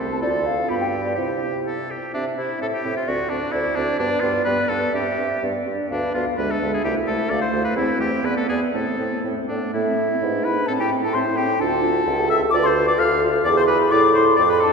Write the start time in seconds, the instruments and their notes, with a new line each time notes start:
Already playing: bassoon C2, oboe A4
0.00 clarinet C4, french horn C4
0.12 flute A5
0.22 bassoon D2, french horn C4, clarinet F4, oboe A4, flute D5
0.46 flute F5
0.69 bassoon G2, french horn B3, clarinet F4, oboe G4, flute B5
0.81 flute G5
1.04 flute D5
1.15 bassoon C3, french horn C4, clarinet E4, oboe G4, flute C5
1.66 oboe A4
1.91 oboe G4
2.14 bassoon C3, french horn C4, oboe D4, clarinet E5, flute E5
2.38 bassoon C3, french horn C4, oboe E4, flute E5
2.61 bassoon A2, french horn C4, oboe A4, clarinet C5, flute E5
2.73 oboe G4
2.85 bassoon A2, french horn C4, flute E5
2.97 oboe F4
3.07 bassoon D2, french horn C4, oboe F#4, flute D5, clarinet D5
3.30 bassoon D2, french horn C4, oboe D4, flute D5
3.52 bassoon D2, french horn C4, oboe E4, clarinet C5, flute D5
3.75 bassoon D2, french horn C4, oboe D4, flute D5
3.98 bassoon G2, french horn B3, oboe D4, clarinet B4, flute D5
4.21 bassoon G2, french horn B3, oboe F4, flute D5
4.44 bassoon G2, french horn B3, oboe B4, flute D5, clarinet D5
4.69 bassoon G2, french horn B3, oboe A4, flute D5
4.93 bassoon G2, french horn C4, oboe G4, flute E5, clarinet E5
5.18 bassoon G2, french horn C4, flute E5
5.42 bassoon G2, french horn B3, flute D5
5.66 bassoon G2, french horn D4, flute D5
5.89 bassoon D2, french horn B3, oboe D4, clarinet B4, flute F5
6.13 bassoon D2, french horn B3, oboe F4, flute F5
6.37 bassoon D2, french horn G#3, clarinet D4, oboe B4, flute E5
6.51 oboe A4
6.61 bassoon D2, french horn G#3, flute E5
6.74 oboe G#4
6.84 bassoon C2, french horn A3, clarinet E4, oboe G4, flute E5
7.07 bassoon C2, french horn A3, oboe A4, flute E5
7.29 bassoon D2, french horn A3, clarinet A3, oboe D5, flute F5
7.41 oboe C5
7.52 bassoon D2, french horn A3, flute F5
7.64 oboe B4
7.76 bassoon E2, french horn A3, clarinet C4, oboe E4, flute C5
7.99 bassoon E2, french horn A3, oboe G4, flute C5
8.23 bassoon E2, french horn B3, clarinet B3, oboe B4, flute D5
8.37 oboe A4
8.49 bassoon E2, french horn B3, oboe G#4, flute D5
8.73 bassoon A2, french horn A3, clarinet C4, oboe A4, flute C5
8.99 bassoon A2, french horn A3, flute C5
9.24 bassoon A2, french horn A3, clarinet C4, flute C5
9.48 bassoon A2, french horn A3, clarinet B3, oboe D4, flute D5
9.73 bassoon A2, clarinet A3, oboe E4, french horn A4, flute E5
9.87 clarinet C4
9.98 clarinet A3
10.10 clarinet C4
10.22 bassoon G#2, clarinet E4, french horn B4
10.33 clarinet D4
10.44 clarinet E4, oboe B4, flute B5
10.56 clarinet D4
10.67 bassoon A2, clarinet C4, oboe A4, french horn A4, flute A5
10.80 clarinet E4, oboe G4, flute G5
10.91 clarinet C4
11.03 clarinet E4, oboe A4, flute A5
11.13 bassoon A2, clarinet C4, french horn E4, oboe C5, flute C6
11.25 clarinet E4
11.36 clarinet C4, oboe G4, flute G5
11.48 clarinet E4
11.59 bassoon D2, clarinet D4, french horn F4, oboe A4, flute A5
11.71 clarinet F4
11.82 clarinet D4
11.94 clarinet F4
12.06 bassoon C#2, clarinet A4, french horn A4
12.18 clarinet G4
12.29 clarinet A4, oboe E5, flute E6
12.41 clarinet G4
12.50 bassoon D2, clarinet F4, french horn B4, oboe D5, flute D6
12.63 clarinet A4, oboe C5, flute C6
12.76 clarinet F4
12.87 clarinet A4, oboe D5, flute D6
12.98 bassoon D2, clarinet F4, french horn A4, oboe F5, flute F6
13.10 clarinet A4
13.22 clarinet F4
13.33 clarinet A4
13.44 bassoon E2, french horn G#4, oboe D5, flute D6
13.57 oboe C5, flute C6
13.67 clarinet G#4, oboe B4, flute B5
13.91 bassoon A2, clarinet E4, french horn A4, oboe D5, flute D6
14.14 clarinet E4, oboe C5, flute C6
14.37 bassoon F2, french horn A4, oboe D5, flute D6
14.48 oboe B4, flute B5
14.60 clarinet D4, oboe A4, flute A5